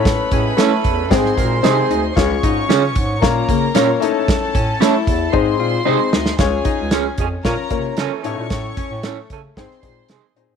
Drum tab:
HH |x-x-x-x-x-x-x-x-|x-x-x-x-x-x-x-x-|x-x-x-x---------|x-x-x-x-x-x-x-x-|
SD |o---o---oo--o---|o---o---o---o---|o---o---------oo|o---o---o---o---|
BD |o-o---o-o-o-----|o-o---o-o-o-----|o-o---o-o-------|o-o---o-o-o-----|

HH |x-x-x-x-x-x-x-x-|
SD |o---o---oo--o---|
BD |o-o---o-o-o-----|